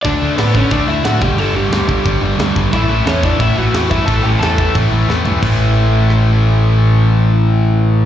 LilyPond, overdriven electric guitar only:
\new Staff \with { instrumentName = "Overdriven electric guitar" } { \time 4/4 \key d \major \tempo 4 = 179 <d' d''>4 <b b'>8 <cis' cis''>8 <d' d''>8 <e' e''>8 <fis' fis''>8 <g' g''>8 | <a' a''>8 <g' g''>2 r4. | <e' e''>4 <cis' cis''>8 <d' d''>8 <e' e''>8 <fis' fis''>4 <e' e''>8 | <a' a''>8 <g' g''>8 <a' a''>4 r2 |
r1 | r1 | }